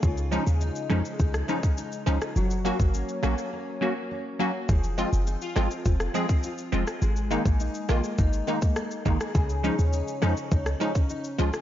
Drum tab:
SH |xxxxxxxxxxxxxxxx|xxxxxxxx--------|xxxxxxxxxxxxxxxx|xxxxxxxxxxxxxxxx|
SD |------r--r-----r|------r---------|------r--r-----r|------r-----r--r|
BD |o-------o--o----|---o------------|o-------o--o----|---o----o--o--o-|

SH |xxxxxxxxxxxxxxxx|
SD |------r--r-----r|
BD |o-------o--o----|